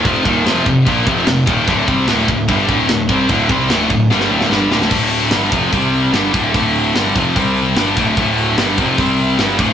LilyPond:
<<
  \new Staff \with { instrumentName = "Distorted electric guitar" } { \clef bass \time 4/4 \key d \phrygian \tempo 4 = 148 <f, c f>8 <ees, bes, ees>8 <f, c f>8 <f, c>8 <bes, f bes>8 <f, c f>8 <f, c>8 <ees, bes, ees>8 | <d, a, d>8 <c g c'>8 <d, a, d>8 <d, a,>8 <g, d g>8 <d, a, d>8 <d, a,>8 <c g c'>8 | <d, a, d>8 <c g c'>8 <d, a, d>8 <d, a,>8 <g, d g>8 <d, a, d>8 <g, d g>8 <d, a, d>8 | <d, a, d>4 <g, d g>8 <f, c f>8 <c g c'>4 <g, d g>8 <d, a, d>8 |
<d, a, d>4 <g, d g>8 <f, c f>8 <c g c'>4 <g, d g>8 <d, a, d>8 | <d, a, d>4 <g, d g>8 <f, c f>8 <c g c'>4 <g, d g>8 <d, a, d>8 | }
  \new Staff \with { instrumentName = "Distorted electric guitar" } { \clef bass \time 4/4 \key d \phrygian <f, c f>8 <ees, bes, ees>8 <f, c f>8 <f, c>8 <bes, f bes>8 <f, c f>8 <f, c>8 <ees, bes, ees>8 | <d, a, d>8 <c g c'>8 <d, a, d>8 <d, a,>8 <g, d g>8 <d, a, d>8 <d, a,>8 <c g c'>8 | <d, a, d>8 <c g c'>8 <d, a, d>8 <d, a,>8 <g, d g>8 <d, a, d>8 <g, d g>8 <d, a, d>8 | <d, a, d>4 <g, d g>8 <f, c f>8 <c g c'>4 <g, d g>8 <d, a, d>8 |
<d, a, d>4 <g, d g>8 <f, c f>8 <c g c'>4 <g, d g>8 <d, a, d>8 | <d, a, d>4 <g, d g>8 <f, c f>8 <c g c'>4 <g, d g>8 <d, a, d>8 | }
  \new Staff \with { instrumentName = "Picked electric bass" } { \clef bass \time 4/4 \key d \phrygian f,,8 ees,,8 f,,8 f,,8 bes,,8 f,,8 f,,8 ees,,8 | d,,8 c,8 d,,8 d,,8 g,,8 d,,8 d,,8 c,8 | d,,8 c,8 d,,8 d,,8 g,,8 d,,8 g,,8 d,,8 | d,,4 g,,8 f,,8 c,4 g,,8 d,,8 |
d,,4 g,,8 f,,8 c,4 g,,8 d,,8 | d,,4 g,,8 f,,8 c,4 g,,8 d,,8 | }
  \new DrumStaff \with { instrumentName = "Drums" } \drummode { \time 4/4 <cymc bd>8 bd8 <cymc sn>8 bd8 <cymc bd>8 bd8 <cymc sn>8 bd8 | <cymc bd>8 bd8 <cymc sn>8 bd8 <cymc bd>8 bd8 <cymc sn>8 bd8 | <cymc bd>8 bd8 <cymc sn>8 bd8 sn16 sn8 sn16 sn8 sn16 sn16 | <cymc bd>8 hho8 <hho sn>8 <hho bd>8 <hho bd>8 hho8 <hho sn>8 <hho bd>8 |
<hho bd>8 hho8 <hho sn>8 <hho bd>8 <hho bd>8 hho8 <hho sn>8 <hho bd>8 | <hho bd>8 hho8 <hho sn>8 <hho bd>8 <hho bd>8 hho8 <hho sn>8 <hho bd>8 | }
>>